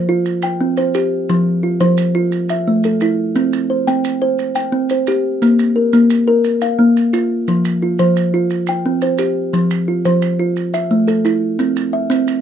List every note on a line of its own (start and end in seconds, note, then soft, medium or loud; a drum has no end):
0.00 0.26 C5 medium
0.09 0.26 F4 medium
0.26 maracas medium
0.42 0.95 G5 medium
0.42 maracas medium
0.61 0.95 C4 medium
0.77 1.29 C5 medium
0.77 maracas medium
0.94 1.29 G4 medium
0.94 maracas medium
1.29 1.64 F3 medium
1.29 maracas medium
1.63 2.14 F4 medium
1.80 2.15 F3 medium
1.80 2.32 C5 medium
1.80 maracas medium
1.98 maracas medium
2.15 2.32 F4 medium
2.32 maracas medium
2.49 3.01 E5 medium
2.49 maracas medium
2.67 3.01 A3 medium
2.84 3.36 A4 medium
2.84 maracas medium
3.01 3.36 E4 medium
3.01 maracas medium
3.36 3.70 C4 medium
3.36 maracas medium
3.53 maracas medium
3.70 4.20 C5 medium
3.87 4.21 C4 medium
3.87 4.39 G5 medium
3.87 maracas medium
4.04 maracas medium
4.22 4.56 C5 medium
4.39 maracas medium
4.55 5.07 G5 medium
4.55 maracas medium
4.72 5.07 C4 medium
4.89 5.42 C5 medium
4.89 maracas medium
5.07 5.42 G4 medium
5.07 maracas medium
5.42 5.76 A#3 medium
5.42 maracas medium
5.59 maracas medium
5.76 6.26 A#4 medium
5.93 6.27 A#3 medium
5.93 maracas medium
6.10 maracas medium
6.28 6.62 A#4 medium
6.44 maracas medium
6.61 7.13 F5 medium
6.61 maracas medium
6.79 7.13 A#3 medium
6.97 maracas medium
7.13 7.48 F4 medium
7.13 maracas medium
7.48 7.82 F3 medium
7.48 maracas soft
7.65 maracas medium
7.82 8.33 F4 medium
7.99 8.34 F3 medium
7.99 8.51 C5 medium
7.99 maracas medium
8.16 maracas medium
8.34 8.51 F4 medium
8.50 maracas medium
8.67 9.20 G5 medium
8.67 maracas medium
8.86 9.20 C4 medium
9.01 9.54 C5 medium
9.01 maracas medium
9.18 9.53 G4 medium
9.18 maracas medium
9.53 9.88 F3 medium
9.53 maracas medium
9.71 maracas medium
9.88 10.38 F4 medium
10.05 10.39 F3 medium
10.05 10.57 C5 medium
10.05 maracas medium
10.22 maracas medium
10.39 10.57 F4 medium
10.56 maracas medium
10.74 11.25 E5 medium
10.74 maracas medium
10.91 11.25 A3 medium
11.08 11.59 A4 medium
11.08 maracas medium
11.25 11.59 E4 medium
11.25 maracas medium
11.59 11.94 C4 medium
11.59 maracas medium
11.76 maracas medium
11.93 12.41 E5 medium
12.10 12.41 C4 medium
12.10 maracas medium
12.28 maracas medium